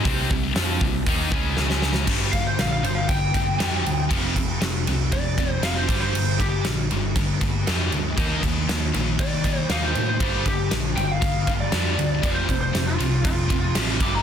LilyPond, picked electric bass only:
\new Staff \with { instrumentName = "Picked electric bass" } { \clef bass \time 4/4 \key g \minor \tempo 4 = 118 c,8 c,8 f,8 c,8 ees,8 cis,8 cis,4 | g,,8 g,,8 bes,,8 g,,8 g,,8 g,,8 f,8 d,8 | f,,8 f,,8 f,,8 c,8 f,4 f,,8 g,,8 | g,,8 g,,8 bes,,8 g,,8 g,,8 g,,8 f,8 d,8 |
ees,8 ees,8 ees,8 bes,,8 ees4 ees,8 a,8 | g,,8 g,,8 bes,,8 g,,8 g,,8 g,,8 f,8 d,8 | f,,8 f,,8 f,,8 c,8 f,4 a,,8 g,,8 | }